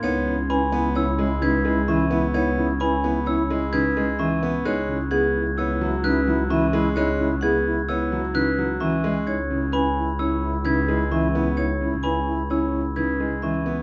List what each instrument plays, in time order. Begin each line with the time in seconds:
Already playing: grand piano A#3
0.03 double bass C#2, grand piano B3, marimba D#4, alto flute E4, vibraphone C#5, glockenspiel G#6
0.27 grand piano C#3, alto flute E4
0.50 grand piano C#4, alto flute E4, marimba B4, vibraphone G#5, glockenspiel B5
0.72 grand piano B3, alto flute E4
0.95 grand piano C#4, marimba E4, alto flute E4, vibraphone C#5, glockenspiel E6
1.19 grand piano G#3, alto flute E4
1.42 grand piano C#3, marimba D#4, alto flute E4, vibraphone B4, glockenspiel G#6
1.65 grand piano G#3, alto flute E4
1.88 grand piano E3, marimba C#4, alto flute E4, vibraphone E5, glockenspiel C#6
2.11 grand piano B3, alto flute E4
2.34 grand piano B3, marimba D#4, alto flute E4, vibraphone C#5, glockenspiel G#6
2.57 grand piano C#3, alto flute E4
2.80 grand piano C#4, alto flute E4, marimba B4, vibraphone G#5, glockenspiel B5
3.04 grand piano B3, alto flute E4
3.26 grand piano C#4, marimba E4, alto flute E4, vibraphone C#5, glockenspiel E6
3.50 grand piano G#3, alto flute E4
3.73 grand piano C#3, marimba D#4, alto flute E4, vibraphone B4, glockenspiel G#6
3.97 grand piano G#3, alto flute E4
4.19 grand piano E3, marimba C#4, alto flute E4, vibraphone E5, glockenspiel C#6
4.43 grand piano B3
4.65 double bass C#2, grand piano G#3, marimba D#4, alto flute E4, vibraphone C#5, glockenspiel F#6
4.88 grand piano C#3, alto flute E4
5.11 grand piano B3, alto flute E4, marimba G#4, vibraphone F#5, glockenspiel G#6
5.36 alto flute E4
5.57 grand piano B3, marimba E4, alto flute E4, vibraphone C#5, glockenspiel E6
5.81 grand piano F#3, alto flute E4
6.04 grand piano C#3, marimba D#4, alto flute E4, vibraphone B4, glockenspiel F#6
6.27 grand piano F#3, alto flute E4
6.50 grand piano E3, marimba C#4, alto flute E4, vibraphone E5, glockenspiel C#6
6.73 grand piano G#3, alto flute E4
6.95 grand piano G#3, marimba D#4, alto flute E4, vibraphone C#5, glockenspiel F#6
7.19 grand piano C#3, alto flute E4
7.41 grand piano B3, alto flute E4, marimba G#4, vibraphone F#5, glockenspiel G#6
7.66 alto flute E4
7.88 grand piano B3, alto flute E4, marimba E4, vibraphone C#5, glockenspiel E6
8.12 grand piano F#3, alto flute E4
8.34 grand piano C#3, marimba D#4, alto flute E4, vibraphone B4, glockenspiel F#6
8.58 grand piano F#3, alto flute E4
8.80 grand piano E3, marimba C#4, alto flute E4, vibraphone E5, glockenspiel C#6
9.04 grand piano G#3
9.27 double bass C#2, alto flute E4, vibraphone C#5, glockenspiel G#6
9.50 grand piano C#3, alto flute E4
9.73 grand piano C#4, alto flute E4, marimba B4, vibraphone G#5, glockenspiel B5
9.97 alto flute E4
10.19 grand piano C#4, marimba E4, alto flute E4, vibraphone C#5, glockenspiel E6
10.42 alto flute E4
10.65 grand piano C#3, marimba D#4, alto flute E4, vibraphone B4, glockenspiel G#6
10.88 grand piano G#3, alto flute E4
11.11 grand piano E3, marimba C#4, alto flute E4, vibraphone E5, glockenspiel C#6
11.35 grand piano B3, alto flute E4
11.57 marimba D#4, alto flute E4, vibraphone C#5, glockenspiel G#6
11.81 grand piano C#3, alto flute E4
12.03 grand piano C#4, alto flute E4, marimba B4, vibraphone G#5, glockenspiel B5
12.27 alto flute E4
12.50 grand piano C#4, alto flute E4, marimba E4, vibraphone C#5, glockenspiel E6
12.73 alto flute E4
12.96 grand piano C#3, marimba D#4, alto flute E4, vibraphone B4, glockenspiel G#6
13.20 grand piano G#3, alto flute E4
13.42 grand piano E3, marimba C#4, alto flute E4, vibraphone E5, glockenspiel C#6
13.66 grand piano B3